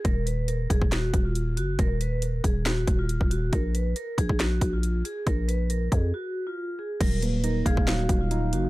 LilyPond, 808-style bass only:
\new Staff \with { instrumentName = "808-style bass" } { \clef bass \time 4/4 \key ees \minor \tempo 4 = 138 ees,,4. ees,,16 ees,,8. ees,,4 ges,,8 | ees,,4. ees,,4 ees,,8. ees,,8. | bes,,4 r8 bes,,16 bes,,8. bes,,4 r8 | bes,,4. f,8 r2 |
ees,,4. ees,,16 ees,,8. ees,,4 ges,,8 | }